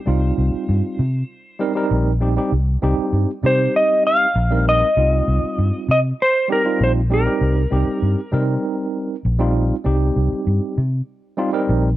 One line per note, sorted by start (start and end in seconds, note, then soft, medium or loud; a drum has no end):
0.00 1.88 C5 medium
0.06 0.30 C2 loud
0.06 1.00 G3 medium
0.06 1.00 C4 medium
0.06 1.01 D#4 medium
0.06 1.01 F4 medium
0.38 0.50 C2 medium
0.54 muted fingered electric bass stroke soft
0.69 0.80 G2 medium
0.99 1.22 C3 medium
1.59 1.72 G3 medium
1.59 1.72 C4 medium
1.59 1.72 D#4 medium
1.59 1.73 A#4 medium
1.75 2.10 G3 medium
1.75 2.11 C4 medium
1.75 2.11 D#4 medium
1.75 2.11 A#4 loud
1.91 2.37 A#1 medium
2.21 2.33 G3 medium
2.21 2.33 C4 medium
2.21 2.33 D#4 medium
2.21 2.34 G4 medium
2.36 2.52 G3 medium
2.36 2.52 C4 medium
2.36 2.52 D#4 medium
2.36 2.53 G4 medium
2.52 2.75 C2 medium
2.82 2.95 C2 medium
2.82 3.29 G3 medium
2.82 3.30 C4 medium
2.82 3.30 D#4 medium
2.82 3.30 G4 medium
2.98 muted fingered electric bass stroke soft
3.13 3.25 G2 medium
3.43 3.67 C3 medium
3.43 4.25 G3 medium
3.43 4.26 C4 medium
3.43 4.26 D#4 medium
3.43 4.26 G4 medium
3.43 3.74 C5 medium
3.76 4.06 D#5 loud
4.07 4.68 F5 medium
4.36 4.82 A#1 loud
4.50 4.86 G3 medium
4.50 4.86 C4 medium
4.50 4.86 D#4 medium
4.50 4.87 A#4 medium
4.69 5.90 D#5 loud
4.96 5.20 C2 loud
4.96 5.90 G3 medium
4.96 5.90 C4 medium
4.96 5.91 D#4 medium
4.96 5.91 F4 medium
5.28 5.39 C2 medium
5.58 5.70 G2 medium
5.89 6.12 C3 medium
5.89 5.99 D#5 medium
6.22 6.52 C5 loud
6.48 6.61 G3 medium
6.48 6.61 C4 medium
6.48 6.62 D#4 medium
6.48 6.62 G4 medium
6.48 6.83 A#4 medium
6.64 7.00 G3 medium
6.64 7.00 C4 medium
6.64 7.00 D#4 medium
6.64 7.00 F4 medium
6.80 7.26 A#1 loud
6.80 6.91 C5 medium
7.10 7.22 G3 medium
7.10 7.22 C4 medium
7.10 7.23 D#4 medium
7.10 7.23 G4 medium
7.10 8.30 A#4 medium
7.25 7.61 G3 medium
7.25 7.61 C4 medium
7.25 7.61 D#4 medium
7.25 7.62 G4 medium
7.41 7.64 C2 medium
7.71 7.84 C2 medium
7.71 8.18 G3 medium
7.71 8.19 C4 medium
7.71 8.19 D#4 medium
7.71 8.19 G4 medium
8.02 8.14 G2 medium
8.32 8.56 C3 medium
8.32 9.14 G3 medium
8.32 9.15 C4 medium
8.32 9.15 D#4 medium
8.32 9.15 A#4 medium
9.25 9.71 A#1 medium
9.39 9.74 G3 medium
9.39 9.75 C4 medium
9.39 9.75 D#4 medium
9.39 9.75 F4 medium
9.84 10.09 C2 medium
9.84 10.78 G3 medium
9.84 10.79 C4 medium
9.84 10.79 D#4 medium
9.84 10.79 G4 medium
10.16 10.28 C2 medium
10.32 muted fingered electric bass stroke soft
10.47 10.58 G2 medium
10.78 11.00 C3 medium
11.37 11.50 G3 medium
11.37 11.50 C4 medium
11.37 11.50 D#4 medium
11.37 11.50 F4 loud
11.52 11.88 G3 medium
11.52 11.88 C4 medium
11.52 11.89 D#4 medium
11.52 11.89 A#4 loud
11.69 11.97 A#1 medium